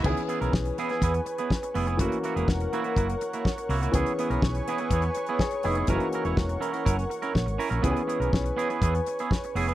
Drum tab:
CC |x---------------|----------------|----------------|----------------|
HH |-xxx-xxxxxxx-xox|xxxx-xxxxxxx-xox|xxxx-xxxxxxx-xox|xxxx-xxxxxxx-xox|
SD |----o--o----o---|----o-------o---|----o-------o---|----o-------o---|
BD |o---o---o---o---|o---o---o---o---|o---o---o---o---|o---o---o---o---|

CC |----------------|
HH |xxxx-xxxxxxx-xox|
SD |----o-------o---|
BD |o---o---o---o---|